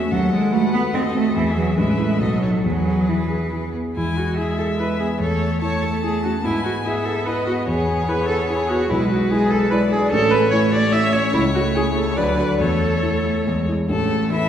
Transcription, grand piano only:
Already playing: E2 C#4 F#4 A4
0.12 D#2
0.32 A4
0.53 F#4
0.73 A4
1.15 C4
1.36 E2
1.57 G#4 B4
1.78 A1
1.99 E4 A4
2.20 B1
2.42 D#4 A4
2.64 E2
2.86 G#4
3.09 E4
3.30 G#4
3.52 E4
3.74 B3
3.97 E2
4.18 G#4
4.38 E4
4.59 G#4
4.80 E4
5.00 B3
5.20 E2
5.42 A4
5.62 E4
5.83 A4
6.04 E4
6.25 C#4
6.44 G#2
6.65 G#4
6.85 E4
7.06 G#4
7.27 E4
7.47 B3
7.67 E2
7.88 G#4
8.08 E4
8.29 G#4
8.50 E4
8.70 B3
8.90 B1
9.11 G#4
9.31 E4
9.51 G#4
9.72 E4
9.92 D4
10.13 A1
10.32 A4
10.53 E4
10.73 A4
10.93 E4
11.14 C#4
11.33 C#2
11.55 A4
11.75 E4
11.96 A4
12.18 D2
12.39 F#4 A4
12.60 E2
12.82 A4
13.03 E4
13.25 A4
13.47 E2
13.69 E4 G#4
13.89 A1 A2
14.31 C#4 E4 A4

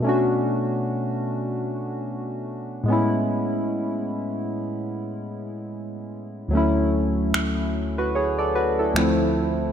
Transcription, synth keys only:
0.00 B2 A3
0.04 C#4 D4
0.09 F#4
2.84 A2 G#3
2.88 B3 C#4
2.92 E4
6.48 D2 F#3
6.53 A3 C#4
6.57 E4
7.98 F#4 B4
8.15 G#4 C#5
8.38 A4 D5
8.55 F#4 B4
8.79 E4 A4
8.94 D2 F3 A3 C4
8.98 E4

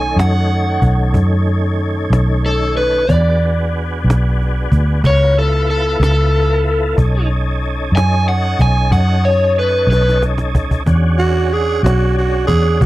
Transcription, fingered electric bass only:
Already playing: B1
0.16 F#2
0.82 B1
1.14 F#2
2.10 B1
3.09 E2
4.04 B1
4.72 D2
5.04 C#2
6.00 C#2
6.98 B1
7.92 F#2
8.59 B1
8.91 F#2
9.87 B1
10.86 E2
11.83 B1
12.48 E2
12.81 B1

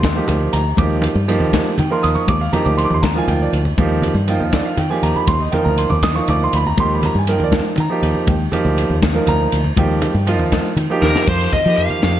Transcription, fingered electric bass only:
Already playing: D#2
0.28 D2
0.53 D2
0.78 D#2
1.15 G2
1.41 D#2
1.79 D#3
2.04 D#2
2.28 D#2
2.66 D2
2.91 D#2
3.28 D2
3.53 D2
3.78 D#2
4.14 G2
4.40 D#2
4.78 D#3
5.02 D#2
5.27 D#2
5.66 D2
5.91 D#2
6.28 D2
6.53 D2
6.78 D#2
7.15 G2
7.41 D#2
7.78 D#3
8.02 D#2
8.28 D#2
8.65 D2
8.90 D#2
9.28 D2
9.53 D2
9.77 D#2
10.14 G2
10.40 D#2
10.76 D#3
11.02 D#2
11.27 F2
11.66 F3
11.78 F2
12.03 F2

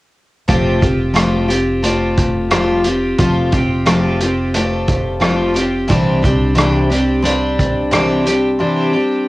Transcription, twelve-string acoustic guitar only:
0.48 F3 A3 C4 F4 G4
0.81 C4 F4 G4
1.14 F3 A3 C4 F4 G4
1.48 C4 F4 G4
1.82 A3 C4 F4 G4
2.51 F3 A3 C4 F4 G4
2.85 C4 F4 G4
3.18 F3 A3 C4 F4 G4
3.52 C4 F4 G4
3.86 F3 A3 C4 F4 G4
4.21 C4 F4 G4
4.54 A3 C4 F4 G4
5.20 F3 A3 C4 F4 G4
5.54 C4 F4 G4
5.88 C3 E3 G3 C4 D4 G4
6.22 G3 C4 D4 G4
6.55 C3 E3 G3 C4 D4 G4
6.90 G3 C4 D4 G4
7.22 G3 C4 D4 G4
7.91 C3 E3 G3 C4 D4 G4
8.26 G3 C4 D4 G4
8.59 C3 E3 G3 C4 D4 G4
8.93 G3 C4 D4 G4

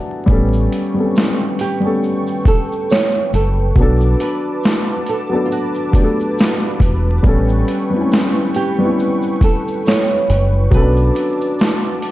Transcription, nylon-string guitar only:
1.61 G4
2.48 A4
2.91 C#5
3.35 A4
4.21 B4
5.09 A4
5.46 F4
5.52 F#4
8.56 G4
9.44 A4
9.87 C#5
10.74 B4

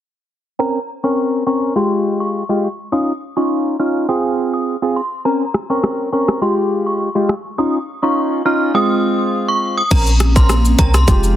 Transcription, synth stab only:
0.59 C4 C#4 A#4
1.04 C4 C#4 A#4
1.47 C4 C#4 A#4
1.76 G#3 F4 G4
2.49 G#3 F4 G4
2.92 C#4 D#4 F4
3.37 C#4 D#4 F4
3.79 C#4 D#4 F4
4.09 C4 F4 G#4
4.82 C4 F4 G#4
5.25 C4 C#4 A#4
5.70 C4 C#4 A#4
6.12 C4 C#4 A#4
6.41 G#3 F4 G4
7.15 G#3 F4 G4
7.58 C#4 D#4 F4
8.03 C#4 D#4 F4
8.45 C#4 D#4 F4
8.74 G#3 C4 F4
9.91 C4 C#4 A#4
10.36 C4 C#4 A#4
10.78 C4 C#4 A#4
11.07 G#3 F4 G4

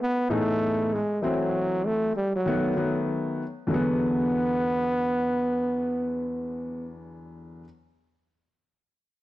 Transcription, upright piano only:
0.29 A2 E3 B3 D#4 G#4
1.22 E3 F#3 A3 C4
2.46 D#3 F#3 A3 B3
2.76 D#3 F#3 A3 B3
3.67 E2 D3 F#3
3.72 G#3 B3

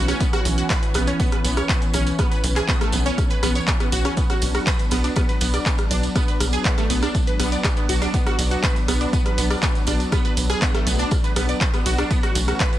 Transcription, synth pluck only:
0.08 C#4 C#5
0.20 B3 B4
0.33 F#4 F#5
0.58 F#4 F#5
0.70 B4 B5
0.95 B3 B4
1.07 C#4 C#5
1.20 B3 B4
1.32 B4 B5
1.44 B3 B4
1.57 C#5 C#6
1.69 B3 B4
1.94 C#4 C#5
2.19 B3 B4
2.31 B4 B5
2.56 G#4 G#5
2.68 B3 B4
2.81 A3 A4
2.93 B3 B4
3.06 C#4 C#5
3.31 B4 B5
3.43 B3 B4
3.55 C#5 C#6
3.80 B3 B4
3.92 F#4 F#5
4.05 C#4 C#5
4.17 B3 B4
4.30 F#4 F#5
4.55 F#4 F#5
4.67 B4 B5
4.92 B3 B4
5.04 D4 D5
5.16 B3 B4
5.29 B4 B5
5.41 B3 B4
5.54 D5 D6
5.66 B3 B4
5.91 D4 D5
6.16 B3 B4
6.28 B4 B5
6.53 G#4 G#5
6.65 B3 B4
6.78 A3 A4
6.90 B3 B4
7.03 D4 D5
7.27 B4 B5
7.39 B3 B4
7.52 D5 D6
7.77 B3 B4
7.89 F#4 F#5
8.02 D4 D5
8.14 B3 B4
8.26 F#4 F#5
8.51 F#4 F#5
8.63 B4 B5
8.88 B3 B4
9.01 D4 D5
9.13 B3 B4
9.26 B4 B5
9.38 B3 B4
9.50 D5 D6
9.63 B3 B4
9.87 D4 D5
10.12 B3 B4
10.25 B4 B5
10.50 G#4 G#5
10.62 B3 B4
10.74 A3 A4
10.87 B3 B4
10.99 D4 D5
11.24 B4 B5
11.36 B3 B4
11.49 D5 D6
11.74 B3 B4
11.86 F#4 F#5
11.98 D4 D5
12.11 B3 B4
12.23 F#4 F#5
12.48 F#4 F#5
12.60 B4 B5

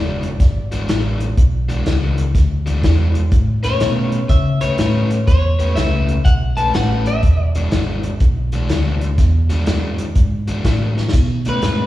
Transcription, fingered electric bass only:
Already playing: F#1
0.40 G#1
0.89 A1
1.38 B1
1.86 C#2
2.35 D2
2.83 E2
3.32 A2
3.82 B2
4.30 C#3
4.63 muted fingered electric bass stroke
4.80 A2
5.28 E2
5.78 C#2
6.26 B1
6.75 A1
7.23 E1
7.72 G#1
8.21 B1
8.70 D2
9.18 E2
9.68 F#2
10.00 muted fingered electric bass stroke
10.16 G#2
10.65 A2
11.14 B2
11.63 G#2

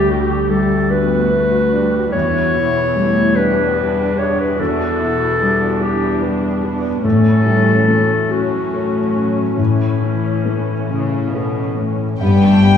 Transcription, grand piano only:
Already playing: D2 D4
0.09 D3
0.49 G3
0.90 D4
1.31 B4
1.73 D4
2.13 E2
2.55 B2
2.96 G3
3.38 D4
3.78 B4
4.20 D4
4.61 E2
5.01 B2
5.41 G3
5.81 D4
6.22 B4
6.64 D4
7.04 A2
7.46 E3
7.88 A3
8.30 C#4
8.73 A4
9.15 C#4
9.57 A2
10.02 E3
10.46 A3
10.90 C#4
11.34 A4
11.77 C#4
12.21 G2

